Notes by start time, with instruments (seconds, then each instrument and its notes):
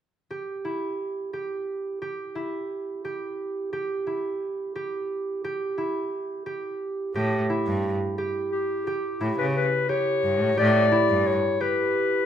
0.31 harp G4
0.65 harp E4
1.33 harp G4
2.02 harp G4
2.35 harp E4
3.05 harp G4
3.73 harp G4
4.07 harp E4
4.76 harp G4
5.44 harp G4
5.78 harp E4
6.46 harp G4
7.15 cello A2, harp G4
7.50 harp E4
7.67 cello G2
8.18 harp G4
8.52 clarinet G4
8.87 harp G4
9.21 cello A2, harp E4
9.38 cello C#3, clarinet B4
9.56 clarinet B4
9.89 harp G4, clarinet C#5
10.24 cello G2
10.41 cello A2
10.57 cello A2, harp G4, clarinet D5
10.92 harp E4
11.09 cello G2
11.27 clarinet C#5
11.61 harp G4, clarinet B4